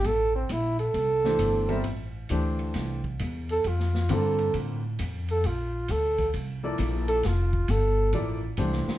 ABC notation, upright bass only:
X:1
M:4/4
L:1/8
Q:"Swing" 1/4=133
K:F
V:1 name="Upright bass" clef=bass
A,,,2 B,,,2 C,,2 G,,,2 | A,,,2 D,,2 C,,2 E,,2 | F,,2 G,,2 A,,2 F,,2 | B,,,2 D,,2 C,,2 B,,,2 |
F,,,2 G,,,2 A,,,2 C,, z |]